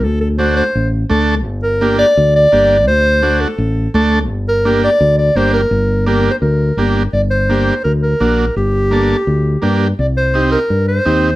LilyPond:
<<
  \new Staff \with { instrumentName = "Clarinet" } { \time 4/4 \key g \minor \tempo 4 = 169 a'8 a'8 c''8 c''4 r4. | r8 bes'4 d''4 d''4. | c''4. a'4. r4 | r8 bes'4 d''4 d''8 c''8 bes'8~ |
bes'4 \tuplet 3/2 { bes'4 c''8 } bes'4. r8 | d''8 c''4. bes'8 bes'4. | g'2.~ g'8 r8 | d''8 c''4 bes'4 c''4. | }
  \new Staff \with { instrumentName = "Transistor combo organ" } { \time 4/4 \key g \minor r4 <a d' fis'>8 r4. <a d' a'>8 r8 | r4 <bes d' g'>8 r4. <bes d' g'>8 r8 | r4 <a d' fis'>8 r4. <a d' a'>8 r8 | r4 <bes d' g'>8 r4. <bes d' g'>8 r8 |
r4 <bes d' g'>8 r4. <bes d' g'>8 r8 | r4 <bes d' g'>8 r4. <bes d' fis'>8 r8 | r4 <bes d' a'>8 r4. <bes d' g'>8 r8 | r4 <c' ees' g'>8 r4. <c' ees' g'>8 r8 | }
  \new Staff \with { instrumentName = "Fingered electric bass" } { \clef bass \time 4/4 \key g \minor d,2 a,,4 d,4 | g,,2 d,4 g,,4 | d,2 a,,4 d,4 | g,,2 d,4 g,,4 |
g,,2 d,4 g,,4 | g,,2 d,4 bes,,4 | g,,2 d,4 g,4 | c,2 g,4 ees,4 | }
>>